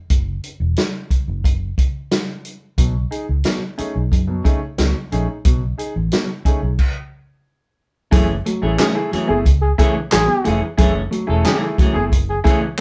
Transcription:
0.10 F#1, kick, closed hi-hat
0.44 closed hi-hat
0.60 E1
0.77 snare, closed hi-hat
1.10 muted fingered electric bass stroke, kick, closed hi-hat
1.28 F#1
1.44 F#1, kick, closed hi-hat
1.78 kick, closed hi-hat
2.11 snare, closed hi-hat
2.45 closed hi-hat
2.78 B1 B2 F#3, kick, closed hi-hat
3.11 D#4 G#4, closed hi-hat
3.29 C#2
3.44 B2 F#3, snare, closed hi-hat
3.78 A3 C#4 D#4 G#4, muted fingered electric bass stroke, closed hi-hat
3.94 B1 D#4 G#4
4.12 F#2 D#4 G#4, kick, closed hi-hat
4.27 B2 F#3
4.44 A3 C#4 D#4 G#4, kick, closed hi-hat
4.78 C#2 B2 F#3, snare, closed hi-hat
5.12 A#1 A3 C#4 D#4 G#4, closed hi-hat
5.28 D#4 G#4
5.45 B1 B2 F#3, kick, closed hi-hat
5.78 D#4 G#4, closed hi-hat
5.96 A1
6.12 B2 F#3, snare, closed hi-hat
6.45 A3 C#4 D#4 G#4, muted fingered electric bass stroke, kick, closed hi-hat
6.62 B1 D#4 G#4
6.79 kick, crash
8.11 F#1 E3 F#3 A3 C#4 E4 G#4, kick, closed hi-hat
8.30 muted clean electric guitar stroke
8.46 F#3 A3, muted clean electric guitar stroke, closed hi-hat
8.62 A1 E3 A3 C#4 E4 G#4
8.77 E3 A3 C#4 G#4, snare, clap, closed hi-hat
8.95 A3 E4 G#4, muted clean electric guitar stroke
9.11 E3 F#3 A3 C#4 G#4, muted clean electric guitar stroke, muted fingered electric bass stroke, closed hi-hat
9.28 F#1 A3 B3 E4 G#4, muted clean electric guitar stroke
9.46 C#2, kick, closed hi-hat
9.61 G#4, muted clean electric guitar stroke
9.78 E3 A3 C#4 E4 G#4, kick, closed hi-hat
9.96 muted clean electric guitar stroke
10.11 A1 F#3 G#4, muted clean electric guitar stroke, snare, clap, closed hi-hat
10.27 B3, muted clean electric guitar stroke
10.44 F1 E3 A3 C#4 E4 G#4, closed hi-hat
10.61 E4 G#4, muted clean electric guitar stroke
10.77 F#1 E3 F#3 A3 C#4 E4 G#4, kick, closed hi-hat
11.11 F#3 A3, muted clean electric guitar stroke, closed hi-hat
11.27 E1 A3 C#4 E4 G#4 A4
11.31 E3 A3
11.44 E3 A3 C#4 G#4, snare, clap, closed hi-hat
11.49 G#4
11.61 A3 E4 G#4, muted clean electric guitar stroke
11.77 E3 F#3 A3, muted clean electric guitar stroke, muted fingered electric bass stroke, kick, closed hi-hat
11.82 C#4 G#4
11.93 F#1 A3 B3 E4 G#4
11.98 muted clean electric guitar stroke
12.12 F#1, kick, closed hi-hat
12.29 G#4, muted clean electric guitar stroke
12.44 E3 A3 C#4 E4 G#4, kick, closed hi-hat
12.48 G#4
12.64 muted clean electric guitar stroke

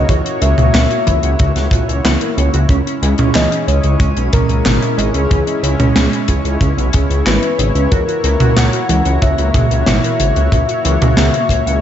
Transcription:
Already playing: A#3 E4 F#4 C#5 D#5
0.09 C#2 E3 F#4 C#5, kick, closed hi-hat
0.25 F#4, closed hi-hat
0.41 C#2 C#3 A#4 E5, closed hi-hat
0.58 C#2 F#4, closed hi-hat, mid tom
0.74 C#2 A#2 F#5, snare, clap, closed hi-hat
0.90 F#4, closed hi-hat
1.07 C#2 E3 C#5, kick, closed hi-hat
1.23 C#2 F#5, closed hi-hat
1.39 C#2 C#3 F#4, kick, closed hi-hat
1.56 C#2 F#4, snare, closed hi-hat
1.71 C#2 A#2 F#4, kick, closed hi-hat
1.88 C#2 C#5, closed hi-hat
2.05 C#2 E3 F#5, snare, clap, closed hi-hat
2.21 A#4, closed hi-hat
2.37 C#2 C#3 C#5, closed hi-hat
2.54 C#2 F#4, closed hi-hat
2.69 C#2 C#3 G#3 C#4 C#5, kick, closed hi-hat
2.86 C#4, closed hi-hat
3.02 C#2 G#3 E4, closed hi-hat
3.18 C#2 C#4, closed hi-hat, mid tom
3.35 C#2 E3 C#5 D#5, snare, clap, closed hi-hat
3.51 C#4, closed hi-hat
3.67 C#2 C#3 G#4 C#5, closed hi-hat
3.83 C#2 C#5, closed hi-hat
4.00 C#2 G#3 C#4, kick, closed hi-hat
4.16 B1 C#4, closed hi-hat
4.33 C#2 E3 C#4 A#4, kick, closed hi-hat, mid tom
4.49 C#2 G#4, closed hi-hat
4.65 G#1 C#3 C#5, snare, clap, closed hi-hat, mid tom
4.82 E4, closed hi-hat
4.98 G#1 G#3 G#4, closed hi-hat
5.14 C#2 C#4, closed hi-hat
5.30 C#2 E3 C#4, kick, closed hi-hat
5.47 C#4, closed hi-hat
5.63 C#2 C#3 E4, closed hi-hat
5.79 C#2 C#4, closed hi-hat, mid tom
5.96 C#2 G#3 C#5, snare, clap, closed hi-hat
6.12 C#4, closed hi-hat
6.28 C#2 E3 G#4, kick, closed hi-hat
6.44 C#2 C#5, closed hi-hat
6.61 C#2 C#3 C#4, kick, closed hi-hat
6.77 B1 C#4, closed hi-hat
6.93 C#2 G#3 C#4, kick, closed hi-hat
7.10 C#2 G#4, closed hi-hat
7.26 G#1 E3 B4 C#5, snare, clap, closed hi-hat
7.43 E4, closed hi-hat
7.59 G#1 C#3 G#4, closed hi-hat
7.75 C#2 C#4, closed hi-hat
7.91 C#2 E3 A#3 F#4 A#4, kick, closed hi-hat
8.08 F#4, closed hi-hat
8.24 C#2 C#3 A#4, closed hi-hat
8.40 C#2 F#4, closed hi-hat, mid tom
8.56 C#2 A#2 F#5, snare, clap, closed hi-hat
8.73 F#4, closed hi-hat
8.89 C#2 E3 C#5, closed hi-hat
9.05 C#2 F#5, closed hi-hat
9.22 C#2 C#3 F#4 E5, kick, closed hi-hat
9.38 C#2 F#4, closed hi-hat
9.54 C#2 A#2 F#4, kick, closed hi-hat, mid tom
9.71 C#2 C#5, closed hi-hat
9.86 G#1 E3 F#5, snare, clap, closed hi-hat, mid tom
10.04 A#4, closed hi-hat
10.20 G#1 C#3 C#5, closed hi-hat
10.36 C#2 F#4, closed hi-hat
10.52 C#2 A#2 F#4, kick, closed hi-hat
10.69 F#4, closed hi-hat
10.85 C#2 E3 A#4, closed hi-hat
11.01 C#2 F#4, closed hi-hat, mid tom
11.17 C#2 C#3 F#5, snare, clap, closed hi-hat
11.34 F#4, closed hi-hat
11.49 C#2 A#2 C#5, kick, closed hi-hat
11.66 C#2 F#5, closed hi-hat

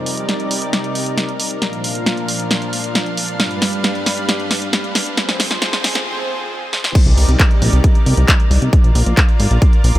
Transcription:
Already playing: C3 G3 D#4 A#4 D5
0.06 open hi-hat
0.17 closed hi-hat
0.29 snare, closed hi-hat
0.40 closed hi-hat
0.51 open hi-hat
0.62 closed hi-hat
0.73 snare, closed hi-hat
0.84 closed hi-hat
0.95 open hi-hat
1.06 closed hi-hat
1.18 snare, closed hi-hat
1.29 closed hi-hat
1.40 open hi-hat
1.62 A#2 F3 D4 F5, snare, closed hi-hat
1.73 closed hi-hat
1.84 open hi-hat
1.95 closed hi-hat
2.06 snare, closed hi-hat
2.17 closed hi-hat
2.28 open hi-hat
2.40 closed hi-hat
2.51 snare, closed hi-hat
2.62 closed hi-hat
2.73 open hi-hat
2.84 closed hi-hat
2.95 snare, closed hi-hat
3.06 closed hi-hat
3.17 open hi-hat
3.28 closed hi-hat
3.40 G2 G3 B4, snare, closed hi-hat
3.51 closed hi-hat
3.62 snare, open hi-hat
3.73 closed hi-hat
3.84 snare, closed hi-hat
3.95 closed hi-hat
4.06 snare, open hi-hat
4.18 closed hi-hat
4.29 snare, closed hi-hat
4.40 closed hi-hat
4.51 snare, open hi-hat
4.62 closed hi-hat
4.73 snare, closed hi-hat
4.84 closed hi-hat
4.95 snare, open hi-hat
5.17 F2 F3 C4 G#4 C5, snare, closed hi-hat
5.29 snare, closed hi-hat
5.40 snare, open hi-hat
5.51 snare, closed hi-hat
5.62 snare, closed hi-hat
5.73 snare, closed hi-hat
5.84 snare, open hi-hat
5.95 snare, closed hi-hat
6.73 snare
6.84 snare
6.95 C3 G3 D#4 A#4 D5, kick, closed hi-hat, crash
7.06 C2, closed hi-hat
7.17 C2, open hi-hat
7.28 C2, closed hi-hat
7.40 kick, clap, closed hi-hat
7.51 closed hi-hat
7.62 A#1, open hi-hat
7.73 C2, closed hi-hat
7.84 kick, closed hi-hat
7.95 closed hi-hat
8.06 C2, open hi-hat
8.17 C2, closed hi-hat
8.28 kick, clap, closed hi-hat
8.40 closed hi-hat
8.51 C2, open hi-hat
8.62 C2, closed hi-hat
8.73 F4 A#4 D5, kick, closed hi-hat
8.84 A#1, closed hi-hat
8.95 A#1, open hi-hat
9.06 A#1, closed hi-hat
9.17 kick, clap, closed hi-hat
9.29 closed hi-hat
9.40 G#1, open hi-hat
9.51 A#1, closed hi-hat
9.62 kick, closed hi-hat
9.73 closed hi-hat
9.84 A#1, open hi-hat
9.95 A#1, closed hi-hat

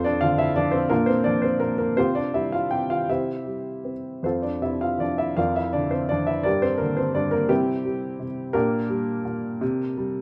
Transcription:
Already playing: F2 C4 F4 A4 C5
0.04 D4 D5
0.21 D3 F4 F5
0.38 E4 E5
0.56 F3 D4 D5
0.72 C4 C5
0.89 A#2 A#3 D4 F4 A#4
1.06 C4 C5
1.24 F3 D4 D5
1.42 C4 C5
1.60 A#2 A#3 A#4
1.78 A#3 A#4
1.96 C3 C4 F4 G4 C5
2.15 D4 D5
2.34 G3 E4 E5
2.52 F4 F5
2.71 C3 G4 G5
2.90 F4 F5
3.09 C3 E4 G4 C5 E5
3.46 G3
3.85 C4
4.23 F2 C4 F4 A4 C5
4.42 D4 D5
4.61 C3 E4 E5
4.81 F4 F5
4.99 F3 D4 D5
5.18 E4 E5
5.37 F2 F4 A#4 D5 F5
5.56 E4 E5
5.73 D3 D4 D5
5.91 C4 C5
6.09 F2 D4 D5
6.27 E4 E5
6.43 G2 D4 G4 A#4 D5
6.62 C4 C5
6.78 D3 A#3 A#4
6.97 C4 C5
7.14 G2 D4 D5
7.31 A#3 A#4
7.49 C3 G3 C4 E4 G4
7.85 G3
8.20 C3
8.53 A#2 A#3 D4 G4 A#4
8.89 G3
9.25 A#2
9.61 C3
9.97 G3

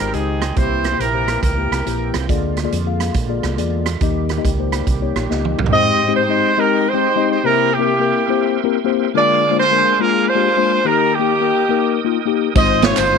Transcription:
Already playing: D#3 G#3 C4 D#4 G4 A#4 G5
0.00 G#1
0.13 C#2 G#3 C4 D#4 G4 G#4 D#5, closed hi-hat
0.42 cross-stick, closed hi-hat
0.56 C2 C3 E3 A#3 E4 G4 C5, kick, closed hi-hat
0.84 cross-stick, closed hi-hat
0.92 A#3 E4 G4 C5
0.99 A#1 E4 G4 A#4, closed hi-hat
1.14 A#3 E4 G4 C5
1.28 cross-stick, closed hi-hat
1.43 C#2 E4 G4 A#4, kick, closed hi-hat
1.57 A#3 E4 G4 A#4
1.71 C2, cross-stick, closed hi-hat
1.86 A#1 A#3 E4 G4 A#4, closed hi-hat
2.14 C2, cross-stick, closed hi-hat
2.28 D2 D3 G#3 A#3 F4 G#4 D5, kick, closed hi-hat
2.56 cross-stick, closed hi-hat
2.63 A#3 F4 G#4 D5
2.72 F2, closed hi-hat
2.85 A#3 F4 G#4 F5
3.00 cross-stick, closed hi-hat
3.14 A#1, kick, closed hi-hat
3.28 A#3 F4 G#4 D5
3.43 C2, cross-stick, closed hi-hat
3.57 E2 A#3 F4 G#4 D5, closed hi-hat
3.86 cross-stick, closed hi-hat
4.01 D#2 D#3 G3 A#3 D#4 G4 D#5, kick, closed hi-hat
4.29 cross-stick, closed hi-hat
4.37 A#3 D#4 G4 D#5
4.45 C#2, kick, closed hi-hat
4.59 A#3 D#4 G4 C5
4.72 cross-stick, closed hi-hat
4.87 C2, kick, closed hi-hat
5.01 A#3 D#4 G4 C#5
5.16 A#1, cross-stick, closed hi-hat
5.29 C#2 A#3 D#4 G4 D#5, snare
5.45 high tom
5.59 C2, mid tom
5.66 floor tom
5.71 G#2 G#3 C4 D#4 G4 C5 D#5 G5 C6
6.08 G#3 C4 D#4 G4 C5
6.17 D#4 G4 C5
6.29 G#3 C4 D#4 G4 D#5
6.57 G#3 C4 D#4 G4 A#4 D#5
6.89 D#4 G4 C5
6.94 G#3 C4 D#4 G4 C5
7.16 G#3 C4 D#4 G4 D#5
7.31 C5
7.44 C3 A#3 C4 E4 G4 A#4 C5 E5
7.73 A#3 E4 G4
7.79 A#3 C4 E4 G4 A#4
8.00 A#3 C4 E4 G4 A#4
8.29 A#3 C4 E4 G4 C5
8.64 A#3 C4 E4 G4 A#4
8.84 A#3 C4 E4 G4 C5
9.14 D3 G#3 A#3 D4 F4 G#4 A#4 D5 F5 G#5 D6
9.50 G#3 A#3 D4 F4 C5
9.58 F4 G#4 C5
9.71 G#3 A#3 D4 F4 A#4
9.99 G#3 A#3 D4 F4 G#4 A#4
10.29 F4 G#4 C5
10.35 G#3 A#3 D4 F4 G4
10.57 G#3 A#3 D4 F4 C5
10.85 D#3 A#3 D#4 G4 A#4 D#5 G5 D#6
11.14 A#3 D#4 G4
11.19 A#3 D#4 G4
11.41 A#3 D#4 A#4
11.69 A#3 D#4 A#4
12.04 A#3 D#4 F4
12.26 A#3 D#4 G4
12.55 G#1 G#2 G#3 C4 D#4 F4 C5 D#5 F5 G#5, kick, ride, tambourine
12.82 C#5, snare, ride, tambourine
12.90 G#3 C4 D#4 F4 C5
12.97 G1 D#4 F4 C5, clap, ride, tambourine
13.12 G#3 C4 D#4 F4 C5

